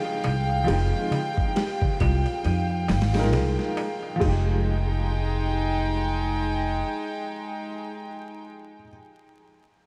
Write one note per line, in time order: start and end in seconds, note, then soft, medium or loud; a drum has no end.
0.00 0.62 F3 loud
0.00 0.63 G#3 medium
0.00 0.65 D#4 loud
0.00 1.52 G#4 medium
0.00 4.17 F5 medium
0.00 0.66 G5 loud
0.00 4.20 G5 medium
0.05 darbuka tek soft
0.24 0.64 C2 medium
0.24 ride medium
0.24 darbuka tek loud
0.49 darbuka tek soft
0.64 2.82 F3 medium
0.64 2.84 G#3 medium
0.64 ride medium
0.64 darbuka tek medium
0.69 0.91 F1 loud
0.69 2.85 D#4 medium
0.73 2.87 G5 loud
0.93 darbuka tek soft
1.11 ride medium
1.11 darbuka tek medium
1.11 darbuka dum medium
1.37 kick medium
1.37 darbuka tek soft
1.56 1.97 G4 medium
1.56 snare loud
1.56 ride medium
1.56 darbuka tek medium
1.82 kick medium
1.82 darbuka tek soft
1.82 darbuka dum medium
2.00 2.23 C2 loud
2.00 2.43 F4 medium
2.00 kick loud
2.00 ride medium
2.00 darbuka tek medium
2.26 ride soft
2.26 darbuka tek soft
2.44 2.91 F2 medium
2.44 2.87 D#4 medium
2.44 ride medium
2.44 darbuka tek medium
2.70 darbuka tek soft
2.88 3.33 G#1 medium
2.88 snare medium
2.88 open hi-hat medium
2.88 darbuka tek medium
3.01 snare medium
3.01 open hi-hat medium
3.11 4.14 F3 medium
3.11 4.16 G#3 medium
3.11 snare medium
3.11 open hi-hat medium
3.11 darbuka tek soft
3.17 4.18 D#4 medium
3.17 4.19 A#4 medium
3.23 snare medium
3.23 open hi-hat medium
3.33 3.55 C2 loud
3.33 4.17 G#4 medium
3.33 snare loud
3.33 ride medium
3.33 darbuka tek medium
3.58 snare medium
3.58 darbuka tek soft
3.77 ride medium
3.77 darbuka tek loud
4.03 darbuka tek soft
4.16 8.75 F3 medium
4.20 6.82 F1 loud
4.20 8.79 G#3 medium
4.20 8.50 G#3 medium
4.20 8.50 D#4 medium
4.20 4.62 D#4 medium
4.20 8.50 G5 medium
4.20 kick loud
4.20 crash medium
4.24 8.83 D#4 medium
4.28 8.87 G4 medium